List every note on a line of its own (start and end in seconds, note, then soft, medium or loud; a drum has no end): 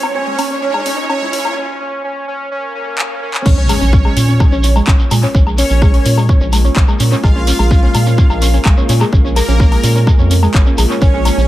0.00 1.53 G#3 medium
0.00 1.53 A#3 medium
0.00 0.13 C#4 loud
0.00 1.53 C#4 medium
0.00 0.08 C#4 medium
0.00 1.53 F4 medium
0.00 0.13 C#5 loud
0.00 1.53 C6 medium
0.00 riser medium
0.00 low woodblock medium
0.15 0.20 C#4 medium
0.15 0.60 C#4 loud
0.15 0.60 C#5 loud
0.27 0.34 G#3 medium
0.39 0.46 C#4 medium
0.39 open hi-hat medium
0.39 low woodblock medium
0.51 0.56 C#4 medium
0.62 0.67 C#4 medium
0.62 1.08 C#4 loud
0.62 1.08 C#5 loud
0.74 0.82 G#3 medium
0.74 low woodblock medium
0.86 0.94 C#4 medium
0.86 open hi-hat medium
0.98 1.03 C#4 medium
1.09 1.15 C#4 medium
1.09 1.55 C#4 loud
1.09 1.55 C#5 loud
1.09 low woodblock medium
1.22 1.29 G#3 medium
1.33 1.41 C#4 medium
1.33 open hi-hat medium
1.45 1.50 C#4 medium
1.45 low woodblock medium
1.57 1.79 C#4 loud
1.80 2.02 C#4 loud
2.04 2.26 C#4 loud
2.28 2.49 C#4 loud
2.51 2.73 C#4 loud
2.51 swell medium
2.75 2.97 C#4 loud
2.98 3.20 C#4 loud
2.98 clap loud
3.22 3.44 C#4 loud
3.34 clap medium
3.46 3.74 A#1 loud
3.46 11.48 G#3 medium
3.46 11.48 A#3 medium
3.46 3.54 C#4 medium
3.46 4.78 C#4 loud
3.46 11.48 F4 medium
3.46 11.00 A#4 medium
3.46 4.78 C#5 loud
3.46 3.54 C#5 medium
3.46 kick loud
3.46 crash loud
3.46 impact medium
3.46 shekere soft
3.58 3.63 C#4 medium
3.58 3.63 C#5 medium
3.69 3.77 G#3 medium
3.69 3.77 G#4 soft
3.69 open hi-hat loud
3.69 low woodblock medium
3.69 shekere medium
3.81 4.10 A#1 medium
3.81 3.89 C#4 medium
3.81 3.89 C#5 medium
3.81 shekere soft
3.93 3.98 C#4 medium
3.93 3.98 C#5 medium
3.93 kick loud
3.93 shekere medium
4.05 4.13 G#3 medium
4.05 4.13 G#4 medium
4.05 low woodblock medium
4.17 4.45 A#2 medium
4.17 4.24 C#4 medium
4.17 4.24 C#5 medium
4.17 open hi-hat loud
4.17 shekere medium
4.29 4.34 C#4 medium
4.29 4.34 C#5 medium
4.29 shekere soft
4.40 4.48 G#3 medium
4.40 4.48 G#4 medium
4.40 kick loud
4.40 low woodblock medium
4.40 shekere soft
4.52 4.80 A#1 loud
4.52 4.60 C#4 medium
4.52 4.60 C#5 medium
4.52 shekere soft
4.63 4.69 C#4 medium
4.63 4.69 C#5 medium
4.63 open hi-hat loud
4.63 shekere medium
4.76 4.83 G#3 medium
4.76 4.83 G#4 medium
4.76 low woodblock medium
4.76 shekere soft
4.87 4.95 A#1 medium
4.87 4.95 C#4 medium
4.87 4.95 C#5 medium
4.87 kick loud
4.87 clap loud
4.87 shekere medium
4.99 5.04 C#4 medium
4.99 5.05 C#5 medium
4.99 shekere soft
5.11 5.26 A#2 medium
5.11 5.19 G#3 medium
5.11 5.19 G#4 medium
5.11 open hi-hat loud
5.11 low woodblock medium
5.11 shekere medium
5.23 5.31 C#4 medium
5.23 5.31 C#5 medium
5.23 shekere soft
5.35 5.63 A#1 loud
5.35 5.40 C#4 medium
5.35 5.40 C#5 medium
5.35 kick loud
5.35 shekere medium
5.47 5.54 G#3 medium
5.47 5.54 G#4 medium
5.47 low woodblock medium
5.58 6.20 C#4 loud
5.58 5.66 C#4 medium
5.58 6.20 C#5 loud
5.58 5.66 C#5 medium
5.58 open hi-hat loud
5.58 shekere loud
5.69 5.99 A#1 medium
5.69 5.75 C#4 medium
5.69 5.75 C#5 medium
5.69 shekere soft
5.82 5.90 G#3 medium
5.82 5.90 G#4 medium
5.82 kick loud
5.82 low woodblock medium
5.82 shekere medium
5.94 6.01 C#4 medium
5.94 6.01 C#5 medium
5.94 open hi-hat medium
6.05 6.34 A#2 medium
6.05 6.11 C#4 medium
6.05 6.11 C#5 medium
6.05 open hi-hat loud
6.05 shekere loud
6.17 6.25 G#3 medium
6.17 6.25 G#4 soft
6.17 low woodblock medium
6.17 shekere soft
6.29 6.37 C#4 medium
6.29 6.37 C#5 medium
6.29 kick loud
6.29 shekere medium
6.41 6.69 A#1 loud
6.41 6.46 C#4 medium
6.41 6.46 C#5 medium
6.41 shekere soft
6.53 6.61 G#3 medium
6.53 6.61 G#4 soft
6.53 open hi-hat loud
6.53 low woodblock soft
6.53 shekere medium
6.64 6.72 C#4 medium
6.64 6.72 C#5 medium
6.64 shekere soft
6.76 6.84 A#1 medium
6.76 6.82 C#4 medium
6.76 6.82 C#5 medium
6.76 kick loud
6.76 clap loud
6.76 shekere soft
6.88 6.96 G#3 medium
6.88 6.96 G#4 medium
6.88 low woodblock soft
6.88 shekere soft
7.00 7.15 A#2 medium
7.00 7.08 C#4 medium
7.00 7.08 C#5 medium
7.00 open hi-hat loud
7.00 shekere medium
7.12 7.17 C#4 medium
7.12 7.17 C#5 medium
7.12 shekere soft
7.24 7.52 A#1 loud
7.24 7.31 G#3 medium
7.24 8.56 F4 loud
7.24 7.31 G#4 medium
7.24 8.56 F5 loud
7.24 kick loud
7.24 low woodblock medium
7.24 shekere soft
7.36 7.43 C#4 medium
7.36 7.43 C#5 medium
7.47 7.52 C#4 medium
7.47 7.52 C#5 medium
7.47 open hi-hat loud
7.47 shekere loud
7.59 7.88 A#1 loud
7.59 7.67 G#3 medium
7.59 7.67 G#4 medium
7.59 low woodblock medium
7.59 shekere soft
7.71 7.79 C#4 medium
7.71 7.79 C#5 medium
7.71 kick loud
7.71 shekere medium
7.83 7.88 C#4 medium
7.83 7.88 C#5 medium
7.94 8.23 A#2 loud
7.94 8.02 G#3 medium
7.94 8.02 G#4 medium
7.94 open hi-hat loud
7.94 low woodblock medium
7.94 shekere medium
8.07 8.14 C#4 medium
8.07 8.14 C#5 medium
8.07 shekere soft
8.18 8.23 C#4 medium
8.18 8.23 C#5 medium
8.18 kick loud
8.18 shekere medium
8.30 8.58 A#1 loud
8.30 8.38 G#3 medium
8.30 8.38 G#4 medium
8.30 low woodblock medium
8.30 shekere soft
8.42 8.50 C#4 medium
8.42 8.50 C#5 medium
8.42 open hi-hat loud
8.42 shekere medium
8.54 8.59 C#4 medium
8.54 8.59 C#5 medium
8.54 shekere soft
8.65 8.73 A#1 medium
8.65 8.73 G#3 medium
8.65 8.73 G#4 medium
8.65 kick loud
8.65 clap loud
8.65 low woodblock soft
8.65 shekere medium
8.77 8.85 C#4 medium
8.77 8.85 C#5 medium
8.77 shekere soft
8.89 9.04 A#2 loud
8.89 8.94 C#4 medium
8.89 8.94 C#5 medium
8.89 open hi-hat loud
8.89 shekere medium
9.01 9.09 G#3 medium
9.01 9.09 G#4 medium
9.01 low woodblock medium
9.01 shekere soft
9.13 9.41 A#1 loud
9.13 9.20 C#4 medium
9.13 9.20 C#5 medium
9.13 kick loud
9.13 shekere medium
9.25 9.30 C#4 medium
9.25 9.30 C#5 medium
9.25 shekere soft
9.36 9.44 G#3 medium
9.36 9.98 A#3 medium
9.36 9.44 G#4 medium
9.36 9.98 A#4 loud
9.36 open hi-hat loud
9.36 low woodblock medium
9.36 shekere loud
9.48 9.77 A#1 medium
9.48 9.56 C#4 medium
9.48 9.56 C#5 medium
9.48 shekere soft
9.60 9.65 C#4 medium
9.60 9.65 C#5 medium
9.60 kick loud
9.60 shekere medium
9.72 9.79 G#3 medium
9.72 9.79 G#4 medium
9.72 open hi-hat medium
9.72 low woodblock soft
9.83 10.12 A#2 medium
9.83 9.91 C#4 medium
9.83 9.91 C#5 medium
9.83 open hi-hat loud
9.83 shekere medium
9.96 10.01 C#4 medium
9.96 10.01 C#5 medium
9.96 shekere soft
10.07 10.15 G#3 medium
10.07 10.15 G#4 medium
10.07 kick loud
10.07 low woodblock medium
10.07 shekere medium
10.19 10.47 F2 loud
10.19 10.27 C#4 medium
10.19 10.27 C#5 medium
10.19 shekere soft
10.31 10.36 C#4 medium
10.31 10.36 C#5 medium
10.31 open hi-hat loud
10.31 shekere medium
10.43 10.50 G#3 medium
10.43 10.50 G#4 medium
10.43 low woodblock medium
10.43 shekere soft
10.54 10.62 G#1 medium
10.54 10.62 C#4 medium
10.54 10.62 C#5 medium
10.54 kick loud
10.54 clap loud
10.54 shekere soft
10.66 10.71 C#4 medium
10.66 10.71 C#5 soft
10.66 shekere soft
10.78 10.86 A#1 loud
10.78 10.86 G#3 medium
10.78 10.86 G#4 medium
10.78 open hi-hat loud
10.78 low woodblock medium
10.78 shekere medium
10.90 10.98 C#4 medium
10.90 10.98 C#5 medium
10.90 shekere soft
11.02 11.30 A#1 loud
11.02 11.48 C#4 loud
11.02 11.07 C#4 medium
11.02 11.48 C#5 loud
11.02 11.07 C#5 medium
11.02 11.48 D#5 medium
11.02 kick loud
11.02 ride medium
11.02 shekere medium
11.14 11.21 G#3 medium
11.14 11.21 G#4 medium
11.25 11.33 C#4 medium
11.25 11.33 C#5 medium
11.25 open hi-hat loud
11.25 ride medium
11.25 low woodblock medium
11.25 shekere loud
11.37 11.48 A#1 loud
11.37 11.42 C#4 medium
11.37 11.42 C#5 medium
11.37 shekere soft